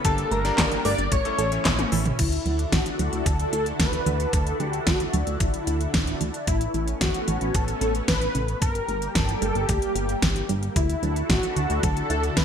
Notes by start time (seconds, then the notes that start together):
0.05 G1 D3 G3 A#3 D4 G4 A4 A5, kick, closed hi-hat
0.18 closed hi-hat
0.31 G1 A3 A#4 A#5, closed hi-hat
0.45 A#3 D4 G4 D5, snare, closed hi-hat
0.58 G1 A#3, kick, snare, clap, closed hi-hat
0.72 closed hi-hat
0.85 G1 A3 A#3 D4 G4 A#4 D5 D6, open hi-hat
0.98 G1, closed hi-hat
1.12 A1 E3 A3 C#4 C#5 C#6, kick, closed hi-hat
1.25 A3 C#4 E4 A4, closed hi-hat
1.39 A1 A4, closed hi-hat
1.52 A3 C#4 E4 C#5, closed hi-hat
1.65 A1 C#4, kick, snare, clap, closed hi-hat, high tom
1.79 closed hi-hat, high tom
1.92 A1 E3 A3 C#4 E4 A4, open hi-hat
2.06 closed hi-hat, mid tom
2.19 D2 D3 D4 E4 F#4 A4, kick, closed hi-hat, crash
2.32 closed hi-hat
2.46 D2 F#3, closed hi-hat
2.59 closed hi-hat
2.72 A1 A3 F#4, kick, snare, closed hi-hat
2.86 closed hi-hat
2.99 D2 F#3, closed hi-hat
3.12 D2, closed hi-hat
3.26 D2 F#3 A4, kick, closed hi-hat
3.40 closed hi-hat
3.52 D2 E4 A4, closed hi-hat
3.66 closed hi-hat
3.79 D2 A3 B4, kick, snare, closed hi-hat
3.93 closed hi-hat
4.06 D2 E3, closed hi-hat
4.20 closed hi-hat
4.33 D2 D3 A4, kick, closed hi-hat
4.47 closed hi-hat
4.60 D2 F#3 G4, closed hi-hat
4.73 closed hi-hat
4.86 D2 A3 F#4, kick, snare, closed hi-hat
5.00 closed hi-hat
5.13 D2 F#3, closed hi-hat
5.27 D2, closed hi-hat
5.33 F#4
5.40 A1 F#3 E4, kick, closed hi-hat
5.54 closed hi-hat
5.67 D2 E4, closed hi-hat
5.81 closed hi-hat
5.94 D1 A3, kick, snare, closed hi-hat
6.07 closed hi-hat
6.21 D2 E3, closed hi-hat
6.34 closed hi-hat
6.47 A1 B2 A3 B3 C#4 E4, kick, closed hi-hat
6.61 closed hi-hat
6.74 A1 E3 E4, closed hi-hat
6.88 closed hi-hat
7.01 E2 A3 F#4, kick, snare, closed hi-hat
7.14 closed hi-hat
7.28 A1 E3, closed hi-hat
7.41 A1, closed hi-hat
7.54 A1 E3 A4, kick, closed hi-hat
7.68 closed hi-hat
7.81 A1 C#4 A4, closed hi-hat
7.95 closed hi-hat
8.08 A1 A3 B4, kick, snare, closed hi-hat
8.22 closed hi-hat
8.35 A1 C#3, closed hi-hat
8.48 closed hi-hat
8.62 G1 D3 G3 A#3 G4 A#4, kick, closed hi-hat
8.75 closed hi-hat
8.88 G1 A3, closed hi-hat
9.02 closed hi-hat
9.15 G1 A#3 A4, kick, snare, closed hi-hat
9.29 closed hi-hat
9.42 G1 A3 A4, closed hi-hat
9.55 G1, closed hi-hat
9.69 D2 A3 G4, kick, closed hi-hat
9.82 closed hi-hat
9.95 G1 G4, closed hi-hat
10.09 closed hi-hat
10.22 G1 A#3, kick, snare, closed hi-hat
10.36 closed hi-hat
10.49 G1 G3, closed hi-hat
10.63 closed hi-hat
10.76 D2 D3 D4 E4 F#4 A4, kick, closed hi-hat
10.89 closed hi-hat
11.03 D2 F#3, closed hi-hat
11.16 closed hi-hat
11.30 A1 A3 F#4, kick, snare, closed hi-hat
11.43 closed hi-hat
11.56 D2 D3, closed hi-hat
11.70 D2, closed hi-hat
11.83 D2 F#3 A4, kick, closed hi-hat
11.97 closed hi-hat
12.10 D2 E4 A4, closed hi-hat
12.23 closed hi-hat
12.37 D2 A3 B4, kick, snare, closed hi-hat